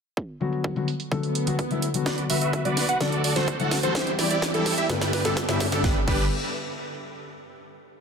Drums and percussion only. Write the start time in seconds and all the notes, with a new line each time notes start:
0.17 kick
0.41 closed hi-hat
0.53 closed hi-hat
0.64 kick
0.76 closed hi-hat
0.88 closed hi-hat
1.00 closed hi-hat
1.12 kick, closed hi-hat
1.23 closed hi-hat
1.35 closed hi-hat
1.47 closed hi-hat
1.59 kick, closed hi-hat
1.71 closed hi-hat
1.82 closed hi-hat
1.94 closed hi-hat
2.06 kick, snare, closed hi-hat
2.18 closed hi-hat
2.30 open hi-hat
2.41 closed hi-hat
2.53 kick, closed hi-hat
2.65 closed hi-hat
2.77 snare, open hi-hat
2.89 closed hi-hat
3.01 kick, snare, closed hi-hat
3.12 closed hi-hat
3.24 open hi-hat
3.36 snare, closed hi-hat
3.48 kick, closed hi-hat
3.60 closed hi-hat
3.71 snare, open hi-hat
3.83 closed hi-hat
3.95 kick, snare, closed hi-hat
4.07 closed hi-hat
4.19 snare, open hi-hat
4.31 closed hi-hat
4.42 kick, snare, closed hi-hat
4.54 closed hi-hat
4.66 snare, open hi-hat
4.78 closed hi-hat
4.89 kick, snare, closed hi-hat
5.01 snare, closed hi-hat
5.13 snare, open hi-hat
5.25 snare, closed hi-hat
5.37 kick, snare, closed hi-hat
5.49 snare, closed hi-hat
5.60 snare, open hi-hat
5.72 snare
5.84 kick, snare
6.08 kick, crash